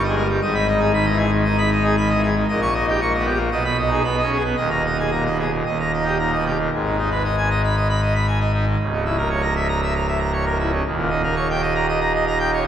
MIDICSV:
0, 0, Header, 1, 2, 480
1, 0, Start_track
1, 0, Key_signature, 5, "minor"
1, 0, Tempo, 515907
1, 399, Time_signature, 4, 2, 24, 8
1, 3763, Tempo, 534759
1, 6163, Tempo, 515464
1, 11707, End_track
2, 0, Start_track
2, 0, Title_t, "Pipe organ"
2, 0, Program_c, 0, 19
2, 0, Note_on_c, 0, 31, 80
2, 0, Note_on_c, 0, 43, 79
2, 29, Note_on_c, 0, 75, 76
2, 69, Note_on_c, 0, 56, 70
2, 141, Note_off_c, 0, 75, 0
2, 144, Note_on_c, 0, 70, 88
2, 209, Note_off_c, 0, 56, 0
2, 221, Note_on_c, 0, 55, 74
2, 254, Note_off_c, 0, 55, 0
2, 257, Note_off_c, 0, 70, 0
2, 273, Note_on_c, 0, 55, 77
2, 360, Note_off_c, 0, 31, 0
2, 361, Note_off_c, 0, 43, 0
2, 377, Note_off_c, 0, 55, 0
2, 385, Note_on_c, 0, 32, 89
2, 385, Note_on_c, 0, 44, 90
2, 389, Note_on_c, 0, 75, 87
2, 500, Note_off_c, 0, 75, 0
2, 508, Note_on_c, 0, 83, 97
2, 619, Note_off_c, 0, 83, 0
2, 629, Note_on_c, 0, 75, 85
2, 710, Note_on_c, 0, 63, 77
2, 739, Note_off_c, 0, 75, 0
2, 746, Note_on_c, 0, 68, 82
2, 855, Note_off_c, 0, 63, 0
2, 857, Note_off_c, 0, 68, 0
2, 865, Note_on_c, 0, 51, 64
2, 871, Note_on_c, 0, 83, 82
2, 980, Note_off_c, 0, 83, 0
2, 981, Note_on_c, 0, 75, 91
2, 1012, Note_off_c, 0, 51, 0
2, 1027, Note_on_c, 0, 52, 66
2, 1095, Note_off_c, 0, 75, 0
2, 1101, Note_on_c, 0, 68, 72
2, 1167, Note_off_c, 0, 52, 0
2, 1185, Note_on_c, 0, 51, 75
2, 1211, Note_off_c, 0, 51, 0
2, 1214, Note_off_c, 0, 68, 0
2, 1229, Note_on_c, 0, 51, 83
2, 1339, Note_off_c, 0, 51, 0
2, 1343, Note_on_c, 0, 63, 70
2, 1344, Note_on_c, 0, 75, 86
2, 1457, Note_off_c, 0, 75, 0
2, 1468, Note_on_c, 0, 83, 74
2, 1492, Note_off_c, 0, 63, 0
2, 1579, Note_off_c, 0, 83, 0
2, 1593, Note_on_c, 0, 75, 91
2, 1676, Note_on_c, 0, 63, 76
2, 1701, Note_off_c, 0, 75, 0
2, 1714, Note_on_c, 0, 68, 81
2, 1819, Note_off_c, 0, 63, 0
2, 1821, Note_off_c, 0, 68, 0
2, 1835, Note_on_c, 0, 51, 77
2, 1837, Note_on_c, 0, 83, 92
2, 1943, Note_off_c, 0, 83, 0
2, 1948, Note_on_c, 0, 75, 79
2, 1978, Note_off_c, 0, 51, 0
2, 1997, Note_on_c, 0, 52, 72
2, 2058, Note_off_c, 0, 75, 0
2, 2081, Note_on_c, 0, 68, 74
2, 2132, Note_off_c, 0, 52, 0
2, 2156, Note_on_c, 0, 51, 74
2, 2176, Note_off_c, 0, 51, 0
2, 2185, Note_off_c, 0, 68, 0
2, 2195, Note_on_c, 0, 51, 72
2, 2271, Note_off_c, 0, 32, 0
2, 2271, Note_off_c, 0, 44, 0
2, 2297, Note_off_c, 0, 51, 0
2, 2313, Note_on_c, 0, 34, 92
2, 2314, Note_on_c, 0, 46, 81
2, 2314, Note_on_c, 0, 75, 84
2, 2422, Note_off_c, 0, 75, 0
2, 2434, Note_on_c, 0, 85, 98
2, 2542, Note_off_c, 0, 85, 0
2, 2548, Note_on_c, 0, 75, 87
2, 2641, Note_on_c, 0, 63, 75
2, 2659, Note_off_c, 0, 75, 0
2, 2685, Note_on_c, 0, 67, 73
2, 2782, Note_off_c, 0, 63, 0
2, 2789, Note_off_c, 0, 67, 0
2, 2804, Note_on_c, 0, 85, 76
2, 2807, Note_on_c, 0, 58, 68
2, 2908, Note_off_c, 0, 85, 0
2, 2925, Note_on_c, 0, 75, 78
2, 2945, Note_off_c, 0, 58, 0
2, 2965, Note_on_c, 0, 59, 62
2, 3028, Note_off_c, 0, 75, 0
2, 3038, Note_on_c, 0, 67, 78
2, 3097, Note_off_c, 0, 59, 0
2, 3121, Note_on_c, 0, 58, 70
2, 3144, Note_off_c, 0, 67, 0
2, 3246, Note_off_c, 0, 34, 0
2, 3246, Note_off_c, 0, 46, 0
2, 3255, Note_off_c, 0, 58, 0
2, 3270, Note_on_c, 0, 47, 82
2, 3271, Note_on_c, 0, 35, 93
2, 3271, Note_on_c, 0, 75, 64
2, 3380, Note_off_c, 0, 75, 0
2, 3396, Note_on_c, 0, 83, 90
2, 3504, Note_off_c, 0, 83, 0
2, 3522, Note_on_c, 0, 75, 79
2, 3601, Note_on_c, 0, 63, 72
2, 3629, Note_off_c, 0, 75, 0
2, 3634, Note_on_c, 0, 68, 73
2, 3745, Note_off_c, 0, 68, 0
2, 3746, Note_off_c, 0, 63, 0
2, 3756, Note_on_c, 0, 83, 83
2, 3761, Note_on_c, 0, 59, 65
2, 3864, Note_off_c, 0, 83, 0
2, 3888, Note_on_c, 0, 75, 73
2, 3903, Note_off_c, 0, 59, 0
2, 3924, Note_on_c, 0, 61, 59
2, 3991, Note_off_c, 0, 75, 0
2, 4006, Note_on_c, 0, 68, 75
2, 4058, Note_off_c, 0, 61, 0
2, 4079, Note_on_c, 0, 59, 65
2, 4103, Note_off_c, 0, 59, 0
2, 4111, Note_off_c, 0, 68, 0
2, 4121, Note_on_c, 0, 59, 69
2, 4210, Note_off_c, 0, 47, 0
2, 4211, Note_off_c, 0, 35, 0
2, 4223, Note_off_c, 0, 59, 0
2, 4232, Note_on_c, 0, 27, 85
2, 4232, Note_on_c, 0, 75, 65
2, 4233, Note_on_c, 0, 39, 82
2, 4344, Note_off_c, 0, 75, 0
2, 4355, Note_on_c, 0, 82, 89
2, 4466, Note_off_c, 0, 82, 0
2, 4486, Note_on_c, 0, 75, 68
2, 4567, Note_on_c, 0, 63, 58
2, 4593, Note_off_c, 0, 75, 0
2, 4614, Note_on_c, 0, 68, 68
2, 4710, Note_off_c, 0, 63, 0
2, 4718, Note_off_c, 0, 68, 0
2, 4726, Note_on_c, 0, 82, 65
2, 4731, Note_on_c, 0, 46, 58
2, 4834, Note_off_c, 0, 82, 0
2, 4850, Note_on_c, 0, 75, 71
2, 4873, Note_off_c, 0, 46, 0
2, 4900, Note_on_c, 0, 47, 58
2, 4957, Note_off_c, 0, 75, 0
2, 4972, Note_on_c, 0, 68, 69
2, 5032, Note_off_c, 0, 47, 0
2, 5055, Note_on_c, 0, 46, 54
2, 5075, Note_off_c, 0, 46, 0
2, 5078, Note_off_c, 0, 68, 0
2, 5093, Note_on_c, 0, 46, 66
2, 5175, Note_off_c, 0, 27, 0
2, 5176, Note_off_c, 0, 39, 0
2, 5194, Note_off_c, 0, 46, 0
2, 5215, Note_on_c, 0, 39, 78
2, 5216, Note_on_c, 0, 75, 67
2, 5217, Note_on_c, 0, 27, 73
2, 5320, Note_off_c, 0, 75, 0
2, 5338, Note_on_c, 0, 82, 80
2, 5441, Note_off_c, 0, 82, 0
2, 5455, Note_on_c, 0, 75, 68
2, 5539, Note_on_c, 0, 63, 64
2, 5559, Note_off_c, 0, 75, 0
2, 5565, Note_on_c, 0, 67, 63
2, 5673, Note_off_c, 0, 67, 0
2, 5677, Note_off_c, 0, 63, 0
2, 5691, Note_on_c, 0, 46, 58
2, 5695, Note_on_c, 0, 82, 67
2, 5798, Note_off_c, 0, 82, 0
2, 5809, Note_on_c, 0, 75, 63
2, 5831, Note_off_c, 0, 46, 0
2, 5852, Note_on_c, 0, 47, 57
2, 5915, Note_off_c, 0, 75, 0
2, 5930, Note_on_c, 0, 67, 61
2, 5985, Note_off_c, 0, 47, 0
2, 6011, Note_on_c, 0, 46, 59
2, 6032, Note_off_c, 0, 46, 0
2, 6034, Note_off_c, 0, 67, 0
2, 6050, Note_on_c, 0, 46, 67
2, 6136, Note_off_c, 0, 39, 0
2, 6137, Note_off_c, 0, 27, 0
2, 6147, Note_off_c, 0, 46, 0
2, 6170, Note_on_c, 0, 32, 89
2, 6170, Note_on_c, 0, 44, 84
2, 6286, Note_on_c, 0, 51, 58
2, 6393, Note_off_c, 0, 51, 0
2, 6409, Note_on_c, 0, 63, 74
2, 6514, Note_off_c, 0, 63, 0
2, 6528, Note_on_c, 0, 71, 69
2, 6634, Note_off_c, 0, 71, 0
2, 6651, Note_on_c, 0, 75, 70
2, 6757, Note_off_c, 0, 75, 0
2, 6778, Note_on_c, 0, 80, 76
2, 6881, Note_off_c, 0, 80, 0
2, 6894, Note_on_c, 0, 75, 74
2, 6999, Note_off_c, 0, 75, 0
2, 7026, Note_on_c, 0, 83, 109
2, 7126, Note_off_c, 0, 83, 0
2, 7138, Note_on_c, 0, 75, 75
2, 7242, Note_off_c, 0, 75, 0
2, 7261, Note_on_c, 0, 83, 70
2, 7364, Note_off_c, 0, 83, 0
2, 7379, Note_on_c, 0, 75, 81
2, 7483, Note_off_c, 0, 75, 0
2, 7492, Note_on_c, 0, 83, 75
2, 7599, Note_off_c, 0, 83, 0
2, 7611, Note_on_c, 0, 80, 84
2, 7719, Note_off_c, 0, 80, 0
2, 7731, Note_on_c, 0, 75, 71
2, 7839, Note_off_c, 0, 75, 0
2, 7862, Note_on_c, 0, 63, 76
2, 7965, Note_off_c, 0, 63, 0
2, 7982, Note_on_c, 0, 51, 67
2, 8060, Note_off_c, 0, 32, 0
2, 8060, Note_off_c, 0, 44, 0
2, 8080, Note_off_c, 0, 51, 0
2, 8095, Note_on_c, 0, 25, 92
2, 8098, Note_on_c, 0, 37, 82
2, 8216, Note_on_c, 0, 49, 59
2, 8321, Note_off_c, 0, 49, 0
2, 8337, Note_on_c, 0, 64, 68
2, 8441, Note_off_c, 0, 64, 0
2, 8448, Note_on_c, 0, 70, 76
2, 8556, Note_off_c, 0, 70, 0
2, 8567, Note_on_c, 0, 73, 74
2, 8675, Note_off_c, 0, 73, 0
2, 8682, Note_on_c, 0, 82, 95
2, 8792, Note_off_c, 0, 82, 0
2, 8803, Note_on_c, 0, 76, 78
2, 8913, Note_off_c, 0, 76, 0
2, 8928, Note_on_c, 0, 82, 84
2, 9036, Note_off_c, 0, 82, 0
2, 9055, Note_on_c, 0, 76, 81
2, 9160, Note_off_c, 0, 76, 0
2, 9173, Note_on_c, 0, 82, 79
2, 9280, Note_off_c, 0, 82, 0
2, 9290, Note_on_c, 0, 76, 84
2, 9398, Note_off_c, 0, 76, 0
2, 9402, Note_on_c, 0, 82, 75
2, 9514, Note_off_c, 0, 82, 0
2, 9525, Note_on_c, 0, 73, 76
2, 9636, Note_off_c, 0, 73, 0
2, 9645, Note_on_c, 0, 70, 78
2, 9755, Note_off_c, 0, 70, 0
2, 9769, Note_on_c, 0, 64, 75
2, 9877, Note_off_c, 0, 64, 0
2, 9884, Note_on_c, 0, 49, 74
2, 9975, Note_off_c, 0, 25, 0
2, 9976, Note_off_c, 0, 37, 0
2, 9989, Note_off_c, 0, 49, 0
2, 10012, Note_on_c, 0, 39, 97
2, 10014, Note_on_c, 0, 27, 87
2, 10124, Note_on_c, 0, 46, 75
2, 10234, Note_off_c, 0, 46, 0
2, 10243, Note_on_c, 0, 63, 79
2, 10353, Note_off_c, 0, 63, 0
2, 10369, Note_on_c, 0, 70, 80
2, 10477, Note_off_c, 0, 70, 0
2, 10487, Note_on_c, 0, 73, 78
2, 10595, Note_off_c, 0, 73, 0
2, 10617, Note_on_c, 0, 79, 80
2, 10721, Note_off_c, 0, 79, 0
2, 10730, Note_on_c, 0, 75, 86
2, 10836, Note_off_c, 0, 75, 0
2, 10851, Note_on_c, 0, 82, 114
2, 10956, Note_off_c, 0, 82, 0
2, 10974, Note_on_c, 0, 75, 91
2, 11078, Note_off_c, 0, 75, 0
2, 11090, Note_on_c, 0, 82, 83
2, 11195, Note_off_c, 0, 82, 0
2, 11214, Note_on_c, 0, 75, 90
2, 11317, Note_off_c, 0, 75, 0
2, 11337, Note_on_c, 0, 82, 93
2, 11439, Note_off_c, 0, 82, 0
2, 11447, Note_on_c, 0, 79, 84
2, 11553, Note_off_c, 0, 79, 0
2, 11574, Note_on_c, 0, 73, 88
2, 11676, Note_off_c, 0, 73, 0
2, 11707, Note_off_c, 0, 27, 0
2, 11707, Note_off_c, 0, 39, 0
2, 11707, End_track
0, 0, End_of_file